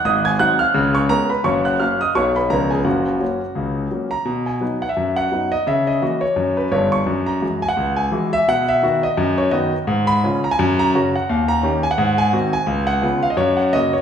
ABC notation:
X:1
M:4/4
L:1/16
Q:"Swing" 1/4=171
K:F#
V:1 name="Grand piano"
[dd']2 [gg']2 [ff']2 [ee']4 [cc']2 [Aa]2 [Bb]2 | [cc']2 [ff']2 [ee']2 [dd']2 [cc']2 [Bb]2 [Aa]2 [Gg]2 | [Ff]12- [Ff]2 a2- | [K:B] a2 g4 f e3 f4 d2 |
e2 d4 c4 B2 c2 c'2- | c'2 a4 g f3 g4 e2 | f2 e4 d4 c2 d2 z2 | [K:F#] z2 b4 a g3 a4 f2 |
z2 a4 g f3 g4 g2- | g2 f4 e d c2 f2 d2 c z |]
V:2 name="Grand piano" clef=bass
[G,,,G,,]4 [F,^B,D]4 [C,,C,]4 [G,=B,C]4 | [F,,,F,,]4 [F,A,C]4 [B,,,B,,F,B,D]4 [C,,C,E,B,=D]4 | [F,,,F,,]4 [F,A,C]4 [C,,C,]4 [F,A,C]4 | [K:B] B,,4 [F,B,D]4 F,,4 [F,B,D]4 |
C,4 [E,A,F]4 F,,4 [=G,,,=G,,]4 | F,,4 [E,G,F]4 C,,4 [E,G,F]4 | B,,4 [D,B,F]4 F,,4 [D,B,F]4 | [K:F#] G,,4 [C,CE]4 F,,4 [C,CF]4 |
D,,4 [D,C=G]4 ^G,,4 [D,^B,F]4 | C,,4 [C,B,E]4 F,,4 [C,A,F]4 |]